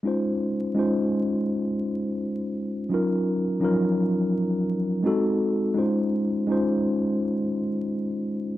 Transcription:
X:1
M:4/4
L:1/8
Q:"Swing 16ths" 1/4=84
K:Db
V:1 name="Tine electric piano"
[A,DEFc] z [A,DEFc]2 z4 | [G,DEFB] z [F,G,DEFB]2 z2 [A,CEG=A]2 | [A,DEFc] z [A,DEFc]2 z4 |]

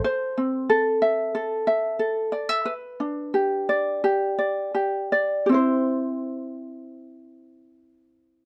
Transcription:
X:1
M:4/4
L:1/16
Q:1/4=85
K:C
V:1 name="Ukulele"
c2 C2 A2 e2 A2 e2 A2 d e | B2 D2 G2 d2 G2 d2 G2 d2 | [CEGc]16 |]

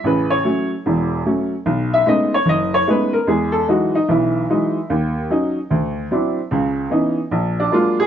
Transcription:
X:1
M:4/4
L:1/8
Q:"Swing" 1/4=149
K:Alyd
V:1 name="Upright piano"
B c2 z4 z | z e d c d c B ^A | G A F D E4 | z8 |
z4 z =D ^E G |]
V:2 name="Upright piano" clef=bass
[A,,,C,]2 [F,A,C] z [E,,,E,,]2 [F,A,C] z | B,,,2 [G,A,B,CD] z F,,,2 [G,A,B,CD] z | [E,,G,]2 [E,F,G,D] z [B,,,E,]2 [E,F,G,D] z | D,,2 [F,CD] z =D,,2 [F,=C=DE] z |
[C,,C,]2 [E,B,CD] z ^A,,,2 [F,G,^A,=D] z |]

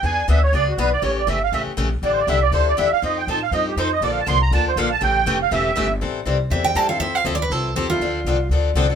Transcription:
X:1
M:4/4
L:1/16
Q:"Swing" 1/4=241
K:Aphr
V:1 name="Accordion"
^g4 e2 ^c2 d2 ^F2 =B2 d2 | ^c2 d2 e2 f2 e2 z6 | (3d2 c2 d2 e2 d2 c2 d2 e2 f2 | _e2 g2 a2 f2 e2 G2 c2 e2 |
(3d2 f2 a2 c'2 b2 a2 c2 f2 a2 | g6 f2 e6- e z | [K:Am] z16 | z16 |
z16 |]
V:2 name="Steel-string acoustic guitar"
z16 | z16 | z16 | z16 |
z16 | z16 | [K:Am] z8 e2 g2 a2 f2 | e2 f2 (3e2 d2 B2 A4 G2 F2- |
F8 z8 |]
V:3 name="Steel-string acoustic guitar"
[E,=B,D^G]2 z2 [E,B,DG]2 z2 [E,B,DG]2 z2 [E,B,DG]2 z2 | [^C,E,A,^CG]2 z2 [C,E,A,CG]2 z2 [C,E,A,CG]2 z2 [C,E,A,CG]2 z2 | [D,G,DEA]2 z2 [D,G,DEA]2 z2 [D,G,DEA]2 z2 [D,G,DEA]2 z2 | [F,C_EA]2 z2 [F,CEA]2 z2 [F,CEA]2 z2 [F,CEA]2 z2 |
[D,F,B,DA]2 z2 [D,F,B,DA]2 z2 [D,F,B,DA]2 z2 [D,F,B,DA]2 z2 | [^C,E,A,^CG]2 z2 [C,E,A,CG]2 z2 [C,E,A,CG]2 z2 [C,E,A,CG]2 z2 | [K:Am] [E,G,CEA]2 z2 [E,G,CEA]2 z2 [E,G,CEA]2 z2 [E,G,CEA]2 [CEA]2 | [F,CEA]2 z2 [F,CEA]2 z2 [F,CEA]2 z2 [F,CEA]2 [CEA]2 |
[D,F,CDA]2 z2 [D,F,CDA]2 z2 [D,F,CDA]2 z2 [D,F,CDA]2 [DA]2 |]
V:4 name="Upright bass" clef=bass
E,,4 D,,4 ^C,,4 =B,,,4 | A,,,4 G,,,4 A,,,2 z2 B,,,4 | A,,,4 C,,4 D,,4 E,,2 z2 | F,,4 A,,4 G,,4 F,,4 |
B,,,4 C,,4 D,,4 B,,,4 | A,,,4 F,,,4 E,,,4 G,,,4 | [K:Am] A,,,4 C,,4 E,,4 G,,4 | F,,4 D,,4 C,,4 E,,4 |
D,,4 C,,4 D,,4 C,,4 |]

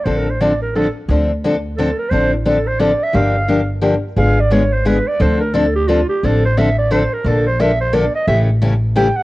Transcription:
X:1
M:3/4
L:1/16
Q:"Swing" 1/4=175
K:Dm
V:1 name="Clarinet"
(3c2 B2 c2 d2 B2 A2 z2 | z8 A2 B2 | c2 E2 A2 c2 d2 e2 | f6 z6 |
^e2 d2 ^c2 =c2 =B2 d2 | c2 B2 A2 G2 F2 G2 | A2 c2 e2 d2 c2 B2 | A2 c2 e2 c2 d2 _e2 |
e2 z6 g2 ^f2 |]
V:2 name="Steel-string acoustic guitar"
[D,F,CDA]2 z2 [D,F,CDA] z3 [D,F,CDA] z3 | [D,F,CDA]2 z2 [D,F,CDA] z3 [D,F,CDA] z3 | [D,F,CDA]2 z2 [D,F,CDA] z3 [D,F,CDA] z3 | [D,F,B,DG]2 z2 [D,F,B,DG] z3 [D,F,B,DG] z3 |
[D,^G,=B,^E^G]2 z2 [D,G,B,EG] z3 [D,G,B,EG] z3 | [D,F,CDA]2 z2 [D,F,CDA] z3 [D,F,CDA] z3 | [D,F,CDA]2 z2 [D,F,CDA] z3 [D,F,CDA] z3 | [D,F,B,DA]2 z2 [D,F,B,DA] z3 [D,F,B,DA] z3 |
[^C,E,A,^CG]2 z2 [C,E,A,CG] z3 [C,E,A,CG] z3 |]
V:3 name="Upright bass" clef=bass
A,,,12 | D,,12 | A,,,12 | G,,,12 |
^G,,,12 | D,,12 | A,,,12 | B,,,12 |
A,,,12 |]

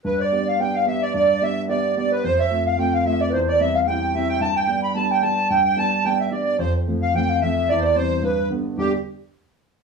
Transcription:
X:1
M:4/4
L:1/16
Q:"Swing" 1/4=220
K:Gmix
V:1 name="Accordion"
B2 d4 f2 g2 f2 e2 d2 | d4 e3 z d4 d2 B2 | c2 e4 f2 g2 f2 e2 d2 | c2 d2 e2 f2 g4 e2 g2 |
a2 g4 b2 a2 g2 a4 | g2 g2 a4 g2 e2 d4 | c2 z4 f2 g4 e4 | d3/2 c/2 d2 c4 B4 z4 |
G2 z12 z2 |]
V:2 name="Flute"
B2 d4 f2 g2 f3/2 f/2 e2 d2 | d4 e3 e d4 d2 B2 | c2 e4 f2 g2 f2 e2 d3/2 B/2 | c2 d2 e2 f2 g2 g2 e4 |
a2 g4 b2 a2 g2 a4 | g2 g2 a4 g2 e2 d4 | c2 z4 f2 g2 f2 e4 | d4 c4 B4 z4 |
G2 z12 z2 |]
V:3 name="Grand piano"
G,,4 [B,DG]4 [B,DG]4 [B,DG]4 | G,,4 [B,DG]4 [B,DG]4 [B,DG]4 | F,,4 [A,CF]4 [A,CF]4 [A,CF]4 | E,,4 [G,CE]4 [G,CE]4 [G,CE]4 |
G,,4 [G,B,D]4 [G,B,D]4 [G,B,D]4 | G,,4 [G,B,D]4 [G,B,D]4 [G,B,D]4 | F,,4 [F,A,C]4 [F,A,C]4 [F,A,C]4 | E,,4 [E,G,C]4 G,,4 [D,G,B,]4 |
[G,,D,G,B,D]2 z12 z2 |]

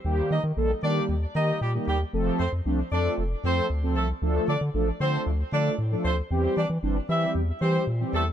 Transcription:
X:1
M:4/4
L:1/16
Q:1/4=115
K:F
V:1 name="Horn section"
z2 [_E_e] z3 [Dd]2 z2 [Ee]2 [G,G] z [G,G] z | z2 [Cc] z3 [Dd]2 z2 [Cc]2 z2 [A,A] z | z2 [Dd] z3 [Cc]2 z2 [Dd]2 z2 [Cc] z | z2 [Dd] z3 [Ee]2 z2 [Cc]2 z2 [A,A] z |]
V:2 name="Analog polysynth"
[_E,G,B,G]2 z2 [E,G,B,A] z [E,G,B,G]2 z2 [E,G,B,G]2 z [E,G,B,G]2 z | [F,A,CA]2 z2 [F,A,CD] z [F,A,CA]2 z2 [F,A,CA]2 z [F,A,CA]2 z | [F,A,DA]2 z2 [F,A,DA] z [F,A,DA]2 z2 [F,A,DA]2 z [F,A,DA]2 z | [E,G,CG]2 z2 [E,G,CD] z [E,G,CG]2 z2 [E,G,CG]2 z [E,G,CG]2 z |]
V:3 name="Analog synth bass" clef=bass
_E,,2 _E, E, B,,,2 E,2 E,,2 E,2 B,,2 E,,2 | F,,,2 F,, F,, C,,2 F,,2 F,,,2 F,,2 D,,2 C,,2 | D,,2 D, D, A,,,2 D,2 D,,2 D,2 A,,2 D,,2 | E,,2 E, E, G,,,2 E,2 E,,2 E,2 B,,2 E,,2 |]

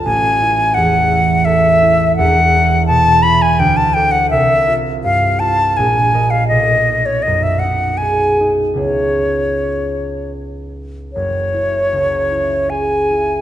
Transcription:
X:1
M:3/4
L:1/16
Q:1/4=82
K:F#dor
V:1 name="Flute"
g4 f4 e4 | f4 a2 b g =g a g f | e4 =f2 a2 g3 ^e | d3 c d e f2 g3 z |
c8 z4 | c8 g4 |]
V:2 name="Harp"
[A,,,A]2 E2 E,,2 E2 A2 E2 | [E,,,E,,]2 E2 B,,2 E2 =D,,2 [A=d]2 | =C,,2 =F2 =G,,2 F2 ^A,,,2 [^Ad]2 | B,,,2 D2 F,,2 D2 G2 D2 |
[C,,B,EGc]12 | F,,,2 E2 C,,2 E2 G2 E2 |]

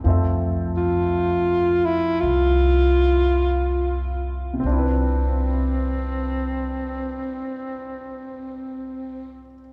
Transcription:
X:1
M:4/4
L:1/8
Q:"Swing" 1/4=47
K:C
V:1 name="Alto saxophone"
z F2 E F3 z | C8 |]
V:2 name="Grand piano"
[F,A,CAe]8 | [C,CDEB]8 |]
V:3 name="Upright bass" clef=bass
F,,4 C,,4 | C,,8 |]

